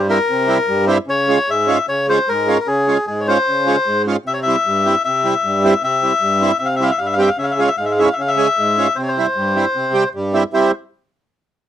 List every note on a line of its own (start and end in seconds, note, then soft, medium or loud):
0.00 0.19 G2 medium
0.08 0.18 G3 medium
0.08 0.18 C4 medium
0.08 0.19 E4 medium
0.08 0.85 A#4 loud
0.30 0.59 C3 medium
0.47 0.58 G3 medium
0.47 0.58 C4 medium
0.47 0.58 E4 medium
0.68 0.98 G2 medium
0.87 0.98 G3 medium
0.87 0.97 C4 medium
0.87 0.98 E4 loud
1.08 1.37 C#3 medium
1.08 1.50 C#5 loud
1.28 1.38 G#3 medium
1.28 1.38 C#4 medium
1.28 1.39 F4 medium
1.48 1.78 G#2 medium
1.48 1.86 E5 loud
1.67 1.77 G#3 medium
1.67 1.77 C#4 medium
1.67 1.78 F4 medium
1.88 2.18 C#3 medium
1.88 2.07 C#5 loud
2.09 2.18 G#3 medium
2.09 2.19 C#4 medium
2.09 2.19 F4 medium
2.09 2.29 C5 loud
2.29 2.58 G#2 medium
2.29 2.59 A#4 loud
2.47 2.57 G#3 medium
2.47 2.57 C#4 medium
2.47 2.58 F4 medium
2.60 2.67 A#4 medium
2.67 2.97 C#3 medium
2.67 3.06 G#4 loud
2.87 2.97 G#3 medium
2.87 2.97 C#4 medium
2.87 2.98 F4 medium
3.07 3.37 G#2 medium
3.07 3.21 G#4 medium
3.21 3.27 C#5 medium
3.28 3.37 G#3 medium
3.28 3.38 C#4 medium
3.28 3.38 F4 medium
3.28 4.02 C5 loud
3.49 3.77 C#3 medium
3.66 3.76 G#3 medium
3.66 3.76 C#4 medium
3.66 3.76 F4 medium
3.87 4.16 G#2 medium
4.07 4.16 G#3 medium
4.07 4.16 C#4 medium
4.07 4.17 F4 medium
4.26 4.55 C3 medium
4.26 4.33 E5 medium
4.34 4.40 C#5 medium
4.43 4.56 G3 medium
4.43 5.02 E5 loud
4.47 4.56 C4 medium
4.47 4.56 E4 medium
4.67 4.95 G2 medium
4.85 4.95 G3 medium
4.85 4.95 C4 medium
4.85 4.95 E4 medium
5.05 5.35 C3 medium
5.05 5.83 E5 loud
5.24 5.34 G3 medium
5.24 5.34 C4 medium
5.24 5.34 E4 medium
5.44 5.73 G2 medium
5.64 5.74 G3 medium
5.64 5.74 C4 medium
5.64 5.74 E4 loud
5.82 6.12 C3 medium
5.82 6.57 E5 loud
6.02 6.12 G3 medium
6.02 6.13 C4 medium
6.02 6.13 E4 medium
6.21 6.51 G2 medium
6.41 6.51 G3 loud
6.41 6.51 C4 medium
6.41 6.52 E4 loud
6.59 6.90 C3 medium
6.59 6.68 E5 medium
6.65 6.75 F5 medium
6.76 6.90 G3 medium
6.76 6.84 E5 medium
6.80 6.91 C4 medium
6.80 6.91 E4 medium
6.80 6.92 F5 medium
6.91 6.99 E5 medium
6.98 7.29 G2 medium
6.98 7.07 F5 medium
7.06 7.15 E5 medium
7.13 7.22 F5 medium
7.18 7.29 G3 medium
7.18 7.29 C4 medium
7.18 7.29 G4 medium
7.18 7.30 E5 medium
7.28 7.37 F5 medium
7.38 7.68 C#3 medium
7.38 7.46 E5 medium
7.44 7.53 F5 medium
7.51 7.60 E5 medium
7.59 7.69 G#3 medium
7.59 7.69 C#4 medium
7.59 7.70 F4 medium
7.59 7.68 F5 loud
7.68 7.76 E5 medium
7.77 8.08 G#2 medium
7.77 7.85 F5 medium
7.85 7.93 E5 medium
7.91 7.99 F5 medium
7.99 8.09 G#3 medium
7.99 8.09 C#4 medium
7.99 8.09 E4 medium
7.99 8.07 E5 medium
8.05 8.14 F5 medium
8.13 8.22 E5 medium
8.18 8.47 C#3 medium
8.18 8.29 F5 medium
8.28 8.97 E5 loud
8.36 8.47 G#3 medium
8.36 8.47 C#4 medium
8.36 8.48 G#4 medium
8.58 8.87 G#2 medium
8.78 8.87 G#3 medium
8.78 8.87 C#4 medium
8.78 8.88 F4 medium
8.96 9.26 C3 medium
8.96 9.02 C5 medium
9.03 9.10 C#5 medium
9.08 10.09 C5 medium
9.18 9.27 G3 medium
9.18 9.27 C4 medium
9.18 9.27 E4 medium
9.36 9.65 G2 medium
9.56 9.65 G3 medium
9.56 9.65 C4 medium
9.56 9.66 E4 medium
9.76 10.04 C3 medium
9.93 10.03 G3 loud
9.93 10.04 C4 medium
9.93 10.04 G4 loud
10.15 10.43 G2 medium
10.34 10.43 G3 medium
10.34 10.43 C4 medium
10.34 10.44 E4 medium
10.54 10.71 G3 medium
10.54 10.71 C4 medium
10.54 10.71 E4 medium
10.54 10.72 C5 medium